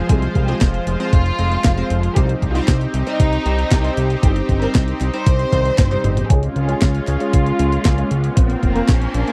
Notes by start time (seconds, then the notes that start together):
Already playing: F3 G#3 F4 C5
0.09 C2 G#3 C4 F4 G#4 C5, kick, closed hi-hat
0.22 closed hi-hat
0.35 C2, kick, closed hi-hat
0.48 G#3 C4 F4 G4 C5, closed hi-hat
0.61 F1, kick, snare, clap, closed hi-hat
0.74 closed hi-hat
0.87 F1, closed hi-hat
1.00 G#3 C4 F4 C5, closed hi-hat
1.13 F1, kick, closed hi-hat
1.26 closed hi-hat
1.39 F1 G#3 C4 F4 C5, closed hi-hat
1.52 closed hi-hat
1.64 F1, kick, snare, clap, closed hi-hat
1.77 G#3 C4 F4 C5, closed hi-hat
1.90 F1, closed hi-hat
2.03 closed hi-hat
2.16 C2 G3 C4 D#4 G4 C5, kick, closed hi-hat
2.29 closed hi-hat
2.42 C2, kick, closed hi-hat
2.55 G3 C4 D#4 F4 C5, closed hi-hat
2.68 C2, kick, snare, clap, closed hi-hat
2.81 closed hi-hat
2.94 C2, closed hi-hat
3.07 G3 C4 D#4 C5, closed hi-hat
3.20 C2, kick, closed hi-hat
3.33 closed hi-hat
3.46 C2 G3 C4 D#4 C5, closed hi-hat
3.58 closed hi-hat
3.71 C2, kick, snare, clap, closed hi-hat
3.84 G3 C4 D#4 C5, closed hi-hat
3.97 C2, closed hi-hat
4.10 closed hi-hat
4.23 G1 G3 C4 D#4 G4 C5, kick, closed hi-hat
4.36 closed hi-hat
4.49 G1, kick, closed hi-hat
4.62 G3 C4 D#4 A#4 C5, closed hi-hat
4.75 C2, kick, snare, clap, closed hi-hat
4.88 closed hi-hat
5.01 C2, clap, closed hi-hat
5.14 G3 C4 D#4 C5, closed hi-hat
5.26 C2, kick, closed hi-hat
5.39 closed hi-hat
5.52 C2 G3 C4 D#4 C5, kick, closed hi-hat, high tom
5.65 closed hi-hat
5.78 G1, kick, snare, clap, closed hi-hat, mid tom
5.91 G3 C4 D#4 C5, closed hi-hat, mid tom
6.04 G1, closed hi-hat, mid tom
6.17 closed hi-hat, mid tom
6.30 C#2 G#3 C#4 F4 G#4 C#5, kick, closed hi-hat, riser
6.43 closed hi-hat
6.56 C#2, closed hi-hat
6.69 G#3 C#4 F4 G#4 C#5, closed hi-hat
6.82 C#2, kick, snare, clap, closed hi-hat
6.95 closed hi-hat
7.07 C#2, clap, closed hi-hat
7.20 G#3 C#4 F4 C#5, closed hi-hat
7.33 C#2, kick, closed hi-hat
7.46 closed hi-hat
7.59 C#2 G#3 C#4 F4 C#5, closed hi-hat
7.72 closed hi-hat
7.85 C#2, kick, snare, clap, closed hi-hat
7.98 G#3 C#4 F4 C#5, closed hi-hat
8.11 C#2, closed hi-hat
8.24 closed hi-hat
8.37 A#1 A#3 C4 F4 C5, kick, closed hi-hat
8.50 closed hi-hat
8.63 F1, kick, closed hi-hat
8.76 A#3 C4 F4 A#4 C5, closed hi-hat
8.88 A#1, kick, snare, clap, closed hi-hat
9.02 closed hi-hat
9.14 A#1, closed hi-hat
9.27 A#3 C4 F4 G#4 C5, closed hi-hat